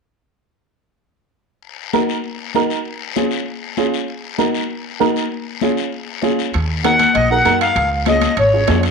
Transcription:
1.63 long guiro
1.93 D#4 F#4 A#4, high conga, short guiro
2.09 short guiro
2.24 long guiro
2.55 D#4 F#4 A#4, high conga, short guiro
2.70 short guiro
2.85 long guiro
3.16 C#4 F4 G#4, high conga, short guiro
3.31 short guiro
3.46 long guiro
3.77 C#4 F4 G#4, high conga, short guiro
3.94 short guiro
4.08 long guiro
4.38 D#4 F#4 A#4, high conga, short guiro
4.54 short guiro
4.71 long guiro
5.00 D#4 F#4 A#4, high conga, short guiro
5.16 short guiro
5.32 long guiro
5.61 C#4 F4 G#4, high conga, short guiro
5.77 short guiro
5.93 long guiro
6.22 C#4 F4 G#4, high conga, short guiro
6.39 short guiro
6.54 D#2, high timbale, long guiro
6.84 D#4 F#4 A#4 F#5, high conga, high timbale, short guiro
7.00 high conga, high timbale, short guiro
7.15 A#1 D#5, high timbale, long guiro
7.30 D#4 F#4 A#4 F#5
7.45 F#2 D#4 F#4 A#4, high conga, high timbale, short guiro
7.61 F5, high timbale, short guiro
7.76 C#2, high timbale, long guiro
8.06 C#4 F4 G#4 D#5, high conga, high timbale, short guiro
8.22 high conga, high timbale, short guiro
8.37 G#1 C#5, high timbale, long guiro
8.54 C#4 F4 G#4
8.68 F2 C#4 F4 G#4, high conga, high timbale, low timbale, short guiro
8.83 high timbale, short guiro

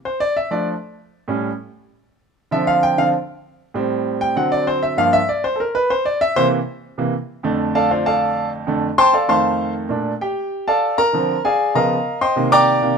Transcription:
0.05 C5
0.20 D5
0.37 E5
0.51 F3 A3 D4 D5
1.28 A2 G3 C#4
2.51 D3 F3 C4 E5
2.67 F5
2.83 G5
2.98 D3 F3 C4 F5
3.74 A2 G3 C4
4.21 G5
4.36 D3 F#3 C4 F#5
4.52 D5
4.67 C5
4.83 E5
4.97 G2 F3 A#3 F5
5.13 E5
5.29 D5
5.44 C5
5.56 A4
5.60 A#4
5.75 B4
5.90 C5
6.05 D5
6.21 E5
6.36 C3 E3 A#3 C5
6.98 C3 E3 A#3
7.43 F2 D3 A3
7.75 A4 D5 F5 A5
7.91 F4 C5 D5 F5
8.06 A4 D5 F5 A5
8.67 F2 D3 A3
8.98 C5 G5 A5 C6
9.13 A4 D5 F5 A5
9.28 F2 D#3 A3 C5 F5 A5 C6
9.89 A#2 A3 D4
10.21 G4 G5
10.68 A4 D5 F5 A5
10.98 A#4 A#5
11.13 D3 F3 C4
11.45 G#4 D5 F5 G#5
11.75 C#3 F3 B3 A#4 D#5 F5 A#5
12.21 C5 D#5 G5 C6
12.36 C3 D#3 A#3
12.52 D5 G5 A#5 D6
12.82 C3 D#3 A#3

